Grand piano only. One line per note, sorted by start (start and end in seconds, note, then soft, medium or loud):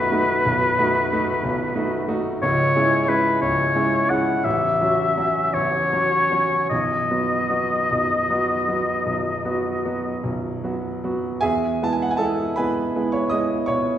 0.00 0.45 B0 medium
0.00 0.45 B1 medium
0.00 0.11 A3 soft
0.00 0.12 D#4 soft
0.00 0.12 F#4 medium
0.11 0.41 A3 soft
0.11 0.42 D#4 soft
0.11 0.42 F#4 soft
0.45 0.77 B0 medium
0.45 0.77 B1 medium
0.79 1.08 A3 soft
0.79 1.08 D#4 soft
0.79 1.09 F#4 soft
1.12 1.41 A3 soft
1.12 1.41 D#4 soft
1.12 1.41 F#4 medium
1.43 1.75 B0 medium
1.43 1.75 B1 soft
1.76 2.05 A3 soft
1.76 2.05 D#4 soft
1.76 2.06 F#4 soft
2.08 2.38 A3 soft
2.08 2.39 D#4 soft
2.08 2.39 F#4 soft
2.42 2.75 C#1 soft
2.42 2.75 C#2 medium
2.76 3.06 G#3 soft
2.76 3.06 C#4 soft
2.76 3.06 E4 soft
3.09 3.38 G#3 soft
3.09 3.39 C#4 soft
3.09 3.39 E4 soft
3.41 3.74 C#1 soft
3.41 3.74 C#2 soft
3.75 4.07 G#3 soft
3.75 4.07 C#4 soft
3.75 4.07 E4 soft
4.10 4.42 G#3 soft
4.10 4.42 C#4 soft
4.10 4.42 E4 soft
4.45 4.79 A0 soft
4.45 4.79 A1 medium
4.81 5.14 F#3 soft
4.81 5.13 C#4 soft
4.81 5.14 F#4 soft
5.18 5.51 F#3 soft
5.18 5.51 C#4 soft
5.18 5.51 F#4 soft
5.54 5.91 A0 soft
5.54 5.91 A1 soft
5.93 6.28 F#3 soft
5.93 6.28 C#4 soft
5.93 6.28 F#4 soft
6.32 6.67 F#3 soft
6.32 6.67 C#4 soft
6.32 6.67 F#4 soft
6.71 7.10 B0 soft
6.71 7.09 B1 soft
7.10 7.46 F#3 soft
7.10 7.47 B3 soft
7.10 7.47 F#4 soft
7.50 7.86 F#3 soft
7.50 7.86 B3 soft
7.50 7.87 F#4 soft
7.91 8.29 B0 soft
7.91 8.29 B1 soft
8.30 8.65 F#3 soft
8.30 8.65 B3 soft
8.30 8.65 F#4 soft
8.68 9.02 F#3 soft
8.68 9.02 B3 soft
8.68 9.03 F#4 soft
9.06 9.44 B0 soft
9.06 9.44 B1 soft
9.45 9.80 F#3 soft
9.45 9.81 B3 soft
9.45 9.81 F#4 soft
9.85 10.20 F#3 soft
9.85 10.20 B3 soft
9.85 10.20 F#4 soft
10.23 10.62 B0 soft
10.23 10.62 B1 soft
10.64 10.99 F#3 soft
10.64 10.99 B3 soft
10.64 11.00 F#4 soft
11.04 11.39 F#3 soft
11.04 11.39 B3 soft
11.04 11.39 F#4 soft
11.41 11.80 E2 soft
11.41 11.80 G#4 medium
11.41 11.79 E5 medium
11.41 11.82 G#5 medium
11.82 12.16 G#3 soft
11.82 12.17 B3 soft
11.82 12.17 E4 soft
11.82 11.92 A5 medium
11.93 12.02 G#5 medium
12.02 12.11 F#5 medium
12.11 12.20 G#5 medium
12.17 12.54 G#3 soft
12.17 12.54 B3 soft
12.17 12.54 E4 soft
12.17 12.54 A4 medium
12.17 12.56 A5 medium
12.56 12.91 G#3 soft
12.56 12.92 B3 soft
12.56 12.92 E4 soft
12.56 13.09 B4 medium
12.56 13.09 G#5 medium
12.56 13.12 B5 medium
12.96 13.29 G#3 soft
12.96 13.29 B3 soft
12.96 13.29 E4 soft
13.12 13.31 C#5 soft
13.12 13.31 C#6 medium
13.29 13.65 G#3 soft
13.29 13.65 B3 soft
13.29 13.66 E4 soft
13.29 13.66 D#5 medium
13.29 13.68 D#6 medium
13.66 13.98 B2 soft
13.66 13.98 C#5 medium
13.66 13.98 C#6 medium